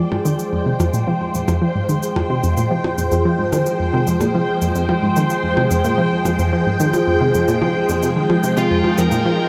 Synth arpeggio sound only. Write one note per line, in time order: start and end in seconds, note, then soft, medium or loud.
0.12 0.25 G#2 medium
0.25 0.35 D#3 loud
0.53 0.62 F2 medium
0.66 0.79 C3 loud
0.80 0.89 F2 medium
0.94 1.06 A#2 loud
1.07 1.13 F3 loud
1.34 1.44 F2 medium
1.48 1.61 F2 loud
1.62 1.71 F3 loud
1.75 1.88 G#2 medium
1.89 1.98 D#3 loud
2.16 2.26 F2 medium
2.30 2.43 C3 loud
2.44 2.53 F2 loud
2.57 2.70 A#2 medium
2.71 2.76 F3 medium
2.98 3.08 F2 medium
3.12 3.25 F2 loud
3.25 3.35 F3 loud
3.39 3.52 G#2 medium
3.53 3.62 D#3 medium
3.80 3.89 F2 medium
3.93 4.06 C3 loud
4.07 4.17 F2 medium
4.21 4.34 A#2 loud
4.35 4.40 F3 medium
4.62 4.71 F2 medium
4.75 4.88 F2 medium
4.89 4.98 F3 medium
5.03 5.16 G#2 medium
5.16 5.26 D#3 loud
5.44 5.53 F2 medium
5.57 5.70 C3 loud
5.71 5.80 F2 medium
5.84 5.97 A#2 loud
5.98 6.04 F3 loud
6.25 6.35 F2 medium
6.39 6.52 F2 loud
6.53 6.62 F3 loud
6.66 6.79 G#2 medium
6.80 6.89 D#3 loud
7.07 7.17 F2 medium
7.21 7.34 C3 medium
7.34 7.44 F2 medium
7.48 7.61 A#2 medium
7.62 7.67 F3 loud
7.89 8.02 F2 medium
8.03 8.12 C3 medium
8.16 8.29 D#3 medium
8.30 8.36 F3 medium
8.44 8.56 C3 medium
8.57 8.70 C3 loud
8.71 8.80 F2 medium
8.98 9.08 F2 loud
9.12 9.25 A#2 medium
9.25 9.31 F3 loud